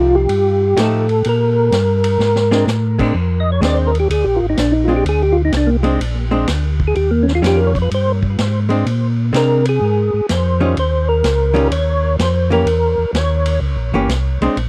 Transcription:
0.00 0.27 C2 medium
0.00 0.26 F3 medium
0.00 0.26 A3 medium
0.00 0.26 D#4 medium
0.00 0.16 F4 medium
0.00 0.26 G4 medium
0.15 0.79 G4 loud
0.29 0.75 G2 medium
0.29 ride medium
0.77 1.23 A2 medium
0.77 1.05 F3 medium
0.77 1.05 A3 medium
0.77 1.05 D#4 medium
0.77 1.06 G4 medium
0.77 1.27 A4 medium
0.77 snare medium
0.77 hi-hat pedal medium
0.77 ride medium
1.09 ride soft
1.25 1.71 A#2 medium
1.25 ride medium
1.29 2.65 A#4 medium
1.72 2.18 G2 medium
1.72 snare medium
1.72 hi-hat pedal medium
1.72 ride medium
2.04 ride medium
2.19 2.65 G#2 medium
2.19 snare soft
2.36 snare soft
2.51 2.66 G#3 medium
2.51 2.65 C4 medium
2.51 2.66 D4 medium
2.51 snare medium
2.67 3.13 A2 medium
2.67 snare medium
2.67 hi-hat pedal medium
2.99 3.13 G#3 medium
2.99 3.13 C4 medium
2.99 3.14 D4 medium
2.99 kick medium
2.99 crash medium
3.14 3.61 F2 medium
3.40 3.51 D#5 medium
3.52 3.61 C#5 medium
3.61 4.08 D#2 loud
3.61 3.90 G#3 medium
3.61 3.90 C4 medium
3.61 3.90 D4 medium
3.61 3.79 D5 medium
3.61 snare medium
3.61 hi-hat pedal soft
3.61 ride medium
3.74 3.91 C5 medium
3.87 3.98 A#4 medium
3.95 ride soft
4.00 4.08 G4 medium
4.10 4.25 D2 medium
4.10 4.26 G#4 medium
4.10 ride medium
4.24 4.41 A#1 soft
4.24 4.40 G4 medium
4.36 4.46 F4 medium
4.41 4.56 G#1 medium
4.50 4.57 D#4 medium
4.57 5.03 A#1 medium
4.57 4.74 D4 medium
4.57 snare medium
4.57 hi-hat pedal medium
4.57 ride medium
4.72 4.88 D#4 medium
4.84 5.03 G#3 soft
4.84 4.94 F4 medium
4.89 5.03 C4 medium
4.89 5.03 D4 medium
4.96 5.04 G4 medium
5.05 5.51 D2 medium
5.05 5.22 G#4 medium
5.05 ride medium
5.23 5.37 G4 medium
5.32 5.42 F4 medium
5.45 5.52 D#4 medium
5.52 5.99 C2 medium
5.52 snare medium
5.52 hi-hat pedal soft
5.52 ride medium
5.57 5.70 D4 medium
5.67 5.77 A#3 medium
5.83 5.98 G#3 medium
5.83 5.98 C4 medium
5.83 5.99 D4 medium
5.83 ride soft
6.00 6.46 A#1 medium
6.00 ride medium
6.31 6.46 G#3 medium
6.31 6.46 C4 medium
6.31 6.46 D4 medium
6.48 6.94 D2 medium
6.48 snare medium
6.48 hi-hat pedal medium
6.48 ride medium
6.80 kick soft
6.87 6.95 G#4 medium
6.95 7.42 D#2 medium
6.95 7.11 G4 medium
6.95 ride medium
7.11 7.26 A#3 medium
7.23 7.33 C#4 medium
7.28 snare soft
7.35 7.43 F4 medium
7.42 7.89 F2 loud
7.42 7.71 D#3 medium
7.42 7.71 G3 medium
7.42 7.71 C#4 medium
7.42 7.72 F4 medium
7.42 snare medium
7.42 hi-hat pedal medium
7.42 ride medium
7.47 7.60 G4 medium
7.57 7.73 A#4 medium
7.67 7.78 C#5 medium
7.75 kick medium
7.75 ride soft
7.82 7.90 B4 medium
7.91 8.37 G2 medium
7.91 8.12 C5 loud
7.91 ride medium
8.23 kick soft
8.39 8.84 G#2 medium
8.39 snare medium
8.39 hi-hat pedal medium
8.39 ride medium
8.69 8.84 G#3 medium
8.69 8.84 C4 medium
8.69 8.85 D4 medium
8.69 ride soft
8.86 9.32 A#2 medium
8.86 ride medium
9.33 9.79 C3 loud
9.33 9.62 G#3 soft
9.33 9.62 C4 medium
9.33 9.62 D4 medium
9.33 9.66 A#4 medium
9.33 snare medium
9.33 hi-hat pedal soft
9.33 ride medium
9.65 10.26 G#4 medium
9.65 ride medium
9.81 10.10 G#2 medium
10.13 10.21 G#2 soft
10.29 10.75 F2 medium
10.29 10.75 C5 medium
10.29 snare medium
10.29 hi-hat pedal medium
10.29 ride medium
10.61 10.75 D#3 medium
10.61 10.75 G3 medium
10.61 10.75 C#4 medium
10.61 10.75 F4 medium
10.77 11.23 D#2 medium
10.77 11.09 C5 medium
10.77 ride medium
11.09 11.68 A#4 medium
11.24 11.70 C#2 medium
11.24 snare medium
11.24 hi-hat pedal soft
11.24 ride medium
11.54 11.69 D#3 medium
11.54 11.69 G3 medium
11.54 11.69 C#4 medium
11.54 11.69 F4 medium
11.54 ride soft
11.71 12.17 D#2 medium
11.71 12.16 C#5 medium
11.71 ride medium
12.19 12.65 F2 medium
12.19 12.51 C5 medium
12.19 snare medium
12.19 hi-hat pedal medium
12.19 ride medium
12.50 12.65 E3 medium
12.50 12.65 A#3 medium
12.50 12.65 C#4 medium
12.50 12.66 G4 medium
12.50 13.11 A#4 medium
12.50 ride soft
12.66 12.96 E2 medium
12.66 ride medium
12.98 13.06 E2 soft
13.13 13.60 D#2 medium
13.13 snare medium
13.13 hi-hat pedal soft
13.13 ride medium
13.17 13.60 C#5 medium
13.46 ride medium
13.61 13.77 C#2 medium
13.76 13.93 A#1 medium
13.92 14.08 G1 medium
13.92 14.08 E3 medium
13.92 14.08 A#3 medium
13.92 14.08 C#4 medium
13.92 14.09 G4 medium
14.08 14.38 C2 medium
14.08 snare medium
14.08 hi-hat pedal medium
14.08 ride medium
14.41 14.49 C2 soft
14.41 14.56 G#3 medium
14.41 14.56 C4 medium
14.41 14.56 D4 medium
14.41 ride soft
14.56 14.69 A#1 medium
14.56 ride medium

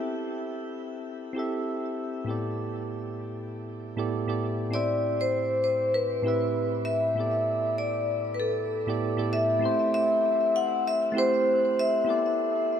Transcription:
0.00 1.31 C4 medium
0.00 1.32 E4 medium
0.00 1.32 G4 medium
0.00 1.33 A4 medium
0.00 1.34 E5 medium
1.33 2.23 C4 medium
1.33 2.24 E4 medium
1.33 2.24 G4 medium
1.38 2.25 A4 medium
1.38 2.26 E5 medium
2.25 3.76 A2 medium
2.25 3.76 B3 medium
2.25 3.77 E4 medium
2.25 3.78 G4 medium
2.29 3.78 A4 medium
2.29 3.79 D5 medium
3.96 4.07 A2 medium
3.96 4.07 B3 medium
3.96 4.07 E4 medium
3.96 4.08 G4 medium
3.96 4.08 A4 medium
3.96 4.08 D5 medium
4.27 4.38 A2 medium
4.27 4.38 B3 medium
4.27 4.38 E4 medium
4.27 4.38 G4 medium
4.27 4.39 A4 medium
4.27 4.39 D5 medium
4.70 6.21 A2 medium
4.70 6.21 C4 medium
4.70 6.22 E4 medium
4.70 6.23 G4 medium
4.74 6.23 C5 medium
4.74 5.22 D5 medium
4.74 6.24 E5 medium
5.21 5.63 C5 medium
5.64 5.95 C5 medium
5.94 6.89 B4 medium
6.22 7.12 A2 medium
6.22 7.13 C4 medium
6.22 7.13 E4 medium
6.22 7.14 G4 medium
6.27 7.15 B4 medium
6.27 7.15 E5 loud
6.85 7.74 E5 loud
7.15 8.66 A2 medium
7.15 8.66 B3 medium
7.15 8.67 E4 medium
7.15 8.67 G4 medium
7.19 8.68 A4 medium
7.19 8.69 D5 medium
7.78 8.30 D5 medium
8.34 8.40 B4 medium
8.40 9.27 A4 medium
8.87 8.97 A2 medium
8.87 8.97 B3 medium
8.87 8.98 E4 medium
8.87 8.98 G4 medium
8.87 8.98 A4 medium
8.87 8.99 D5 loud
9.16 9.27 A2 medium
9.16 9.27 B3 medium
9.16 9.28 E4 medium
9.16 9.28 G4 medium
9.16 9.28 A4 medium
9.16 9.29 D5 loud
9.33 9.89 E5 medium
9.59 11.11 A3 medium
9.59 11.11 C4 medium
9.59 11.12 E4 medium
9.64 11.13 G4 medium
9.64 11.14 C5 loud
9.94 10.56 E5 loud
10.56 10.83 F#5 medium
10.88 11.01 E5 medium
11.12 12.02 A3 medium
11.12 12.03 C4 medium
11.12 12.04 E4 medium
11.17 12.05 G4 medium
11.17 12.05 C5 loud
11.17 11.80 C5 medium
11.79 12.80 E5 loud
12.05 12.80 B3 medium
12.05 12.80 E4 medium
12.05 12.80 G4 medium
12.09 12.80 A4 medium
12.09 12.80 D5 medium

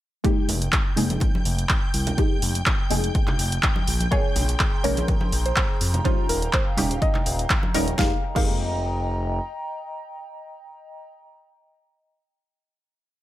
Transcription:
0.24 0.94 G#3 medium
0.24 0.94 A#3 medium
0.24 0.95 D#4 medium
0.24 0.95 G4 loud
0.24 8.00 G5 medium
0.24 8.00 G6 medium
0.24 kick loud
0.24 closed hi-hat medium
0.49 0.68 F1 loud
0.49 open hi-hat loud
0.49 low conga medium
0.62 closed hi-hat medium
0.72 kick loud
0.72 clap loud
0.72 closed hi-hat medium
0.96 1.17 F1 medium
0.96 2.15 G#3 medium
0.96 2.15 A#3 medium
0.96 2.16 D#4 medium
0.96 2.16 G#4 medium
0.96 open hi-hat loud
0.96 low conga medium
1.10 closed hi-hat medium
1.10 high conga medium
1.20 kick loud
1.20 closed hi-hat medium
1.20 high conga medium
1.35 high conga medium
1.45 1.65 F1 medium
1.45 open hi-hat loud
1.59 closed hi-hat medium
1.69 kick loud
1.69 clap loud
1.69 closed hi-hat medium
1.94 2.13 C2 medium
1.94 open hi-hat loud
2.07 closed hi-hat medium
2.07 low conga loud
2.18 2.88 G#3 medium
2.18 2.88 A#3 medium
2.18 2.88 D#4 medium
2.18 2.88 G4 loud
2.18 kick loud
2.18 closed hi-hat soft
2.42 2.62 F1 loud
2.42 open hi-hat loud
2.55 closed hi-hat medium
2.66 kick loud
2.66 clap loud
2.66 closed hi-hat medium
2.90 3.10 F1 medium
2.90 3.86 G#3 medium
2.90 3.86 A#3 medium
2.90 3.86 D#4 medium
2.90 3.86 G#4 medium
2.90 open hi-hat loud
2.90 low conga medium
3.04 closed hi-hat medium
3.15 kick loud
3.15 closed hi-hat soft
3.27 clap soft
3.27 low conga medium
3.39 3.59 F1 medium
3.39 open hi-hat loud
3.52 closed hi-hat medium
3.63 kick loud
3.63 clap loud
3.63 closed hi-hat medium
3.76 high conga medium
3.88 4.07 A#1 medium
3.88 open hi-hat loud
4.00 closed hi-hat medium
4.00 high conga medium
4.11 4.81 G#3 medium
4.11 4.81 A#3 medium
4.11 4.82 C#4 medium
4.11 6.03 G#4 medium
4.11 4.82 G#4 loud
4.11 4.44 C#5 loud
4.11 7.95 A#5 medium
4.11 6.03 C6 medium
4.11 kick loud
4.11 closed hi-hat soft
4.36 4.55 A#1 loud
4.36 open hi-hat loud
4.36 low conga medium
4.49 closed hi-hat medium
4.60 kick loud
4.60 clap loud
4.60 closed hi-hat medium
4.84 5.04 A#1 medium
4.84 6.02 G#3 medium
4.84 6.02 A#3 medium
4.84 6.03 C#4 medium
4.84 6.03 A#4 medium
4.84 5.17 C#5 medium
4.84 open hi-hat loud
4.84 low conga medium
4.97 closed hi-hat medium
4.97 high conga medium
5.08 kick loud
5.08 closed hi-hat soft
5.08 high conga medium
5.21 high conga loud
5.32 5.52 A#1 medium
5.32 open hi-hat loud
5.46 5.77 C5 medium
5.46 closed hi-hat medium
5.56 kick loud
5.56 clap loud
5.56 closed hi-hat soft
5.81 6.00 F2 medium
5.81 open hi-hat loud
5.94 closed hi-hat medium
5.94 low conga medium
6.04 6.75 G3 medium
6.04 6.75 C#4 medium
6.04 6.75 D#4 medium
6.04 6.75 F4 loud
6.04 6.27 C5 medium
6.04 7.97 F5 medium
6.04 7.97 G5 medium
6.04 kick loud
6.04 closed hi-hat soft
6.29 6.49 D#1 loud
6.29 6.51 A#4 medium
6.29 open hi-hat loud
6.42 closed hi-hat medium
6.53 6.97 C5 medium
6.53 kick loud
6.53 clap loud
6.53 closed hi-hat soft
6.77 6.97 D#1 medium
6.77 7.72 G3 medium
6.77 7.72 C#4 medium
6.77 7.72 D#4 medium
6.77 7.73 G4 medium
6.77 open hi-hat loud
6.77 low conga medium
6.91 closed hi-hat medium
7.02 7.90 D#5 medium
7.02 kick loud
7.02 closed hi-hat soft
7.15 clap soft
7.15 low conga medium
7.26 7.46 D#1 loud
7.26 open hi-hat loud
7.39 closed hi-hat medium
7.50 kick loud
7.50 clap loud
7.50 closed hi-hat soft
7.63 high conga medium
7.74 7.94 D#1 loud
7.74 7.85 G3 medium
7.74 7.85 C#4 medium
7.74 7.85 D#4 medium
7.74 7.85 A#4 loud
7.74 open hi-hat loud
7.87 closed hi-hat medium
7.87 high conga medium
7.98 8.13 F1 loud
7.98 8.12 G#3 medium
7.98 8.13 A#3 medium
7.98 8.13 D#4 medium
7.98 8.13 G4 medium
7.98 11.05 D#5 medium
7.98 8.13 F5 medium
7.98 11.05 G5 medium
7.98 11.05 A#5 medium
7.98 kick loud
7.98 snare medium
8.35 9.40 F1 medium
8.35 11.41 G#3 medium
8.35 11.42 A#3 medium
8.35 11.43 D#4 medium
8.35 11.43 G4 medium
8.35 11.42 F5 medium
8.35 kick loud
8.35 crash medium

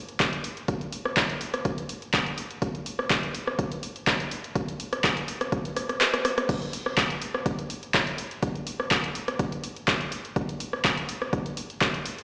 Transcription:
0.09 closed hi-hat soft
0.20 kick loud
0.20 clap loud
0.20 closed hi-hat medium
0.33 closed hi-hat medium
0.44 open hi-hat medium
0.57 closed hi-hat soft
0.68 kick loud
0.68 closed hi-hat medium
0.81 closed hi-hat medium
0.92 open hi-hat loud
1.05 cross-stick medium
1.17 kick loud
1.17 clap loud
1.17 closed hi-hat medium
1.30 closed hi-hat medium
1.41 open hi-hat medium
1.54 cross-stick medium
1.54 closed hi-hat soft
1.65 kick loud
1.65 closed hi-hat medium
1.78 closed hi-hat medium
1.89 open hi-hat loud
2.02 closed hi-hat soft
2.13 kick loud
2.13 clap loud
2.13 closed hi-hat medium
2.26 closed hi-hat medium
2.38 open hi-hat medium
2.51 closed hi-hat soft
2.62 kick loud
2.62 closed hi-hat medium
2.75 closed hi-hat medium
2.86 open hi-hat loud
2.99 cross-stick medium
3.10 kick loud
3.10 clap loud
3.10 closed hi-hat medium
3.23 closed hi-hat medium
3.35 open hi-hat medium
3.47 cross-stick medium
3.59 kick loud
3.59 closed hi-hat medium
3.72 closed hi-hat medium
3.83 open hi-hat loud
3.96 closed hi-hat soft
4.07 kick loud
4.07 clap loud
4.07 closed hi-hat medium
4.20 closed hi-hat medium
4.31 open hi-hat medium
4.44 closed hi-hat soft
4.55 kick loud
4.55 closed hi-hat medium
4.68 closed hi-hat medium
4.80 open hi-hat loud
4.93 cross-stick medium
4.93 closed hi-hat soft
5.04 kick loud
5.04 clap loud
5.04 closed hi-hat medium
5.17 closed hi-hat medium
5.28 open hi-hat medium
5.41 cross-stick medium
5.41 closed hi-hat soft
5.52 kick loud
5.52 closed hi-hat medium
5.65 closed hi-hat medium
5.76 cross-stick medium
5.76 open hi-hat loud
5.89 cross-stick medium
5.89 closed hi-hat soft
6.01 cross-stick medium
6.01 clap loud
6.01 closed hi-hat medium
6.14 cross-stick medium
6.14 closed hi-hat medium
6.25 cross-stick medium
6.25 open hi-hat medium
6.38 cross-stick medium
6.38 closed hi-hat soft
6.49 kick loud
6.49 closed hi-hat medium
6.49 crash medium
6.62 closed hi-hat medium
6.73 open hi-hat loud
6.86 cross-stick medium
6.97 kick loud
6.97 clap loud
6.97 closed hi-hat medium
7.10 closed hi-hat medium
7.22 open hi-hat medium
7.34 cross-stick medium
7.46 kick loud
7.46 closed hi-hat medium
7.59 closed hi-hat medium
7.70 open hi-hat loud
7.83 closed hi-hat soft
7.94 kick loud
7.94 clap loud
7.94 closed hi-hat medium
8.07 closed hi-hat medium
8.18 open hi-hat medium
8.31 closed hi-hat soft
8.43 kick loud
8.43 closed hi-hat medium
8.55 closed hi-hat medium
8.67 open hi-hat loud
8.80 cross-stick medium
8.91 kick loud
8.91 clap loud
8.91 closed hi-hat medium
9.04 closed hi-hat medium
9.15 open hi-hat loud
9.28 cross-stick medium
9.28 closed hi-hat soft
9.39 kick loud
9.39 closed hi-hat medium
9.52 closed hi-hat medium
9.64 open hi-hat loud
9.76 closed hi-hat soft
9.88 kick loud
9.88 clap loud
9.88 closed hi-hat medium
10.01 closed hi-hat medium
10.12 open hi-hat medium
10.25 closed hi-hat soft
10.36 kick loud
10.36 closed hi-hat medium
10.49 closed hi-hat medium
10.60 open hi-hat loud
10.73 cross-stick medium
10.85 kick loud
10.85 clap loud
10.85 closed hi-hat medium
10.97 closed hi-hat medium
11.09 open hi-hat loud
11.22 cross-stick medium
11.33 kick loud
11.33 closed hi-hat medium
11.46 closed hi-hat medium
11.57 open hi-hat loud
11.70 closed hi-hat soft
11.81 kick loud
11.81 clap loud
11.81 closed hi-hat medium
11.94 closed hi-hat medium
12.06 open hi-hat loud
12.18 closed hi-hat soft

